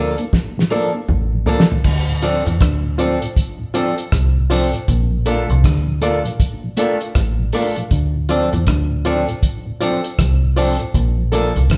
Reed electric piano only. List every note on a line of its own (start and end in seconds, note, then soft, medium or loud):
0.00 0.15 A4 medium
0.00 0.16 A#4 medium
0.00 0.16 D5 loud
0.71 0.91 A4 medium
0.71 0.91 A#4 medium
0.71 0.91 D5 loud
1.46 1.66 A4 medium
1.46 1.67 A#4 medium
1.46 1.67 D5 medium
2.23 2.42 F4 medium
2.23 2.43 C5 medium
2.23 2.43 D5 loud
2.98 3.18 F4 medium
2.98 3.18 C5 medium
2.98 3.19 D5 loud
3.74 3.94 F4 loud
3.74 3.94 C5 medium
3.74 3.94 D5 loud
4.50 4.70 F4 medium
4.50 4.70 C5 medium
4.50 4.70 D5 loud
5.26 5.46 A4 medium
5.26 5.46 A#4 medium
5.26 5.46 D5 loud
6.02 6.21 A4 loud
6.02 6.22 A#4 medium
6.02 6.22 D5 loud
6.78 6.97 A4 medium
6.78 6.98 A#4 medium
6.78 6.98 D5 medium
7.53 7.73 A4 loud
7.53 7.73 A#4 medium
7.53 7.74 D5 loud
8.29 8.49 F4 loud
8.29 8.49 C5 medium
8.29 8.49 D5 loud
9.05 9.25 F4 loud
9.05 9.25 C5 medium
9.05 9.25 D5 loud
9.81 10.00 F4 medium
9.81 10.00 C5 medium
9.81 10.01 D5 loud
10.56 10.76 F4 medium
10.56 10.76 C5 medium
10.56 10.76 D5 loud
11.32 11.52 A4 loud
11.32 11.52 A#4 medium
11.32 11.52 D5 medium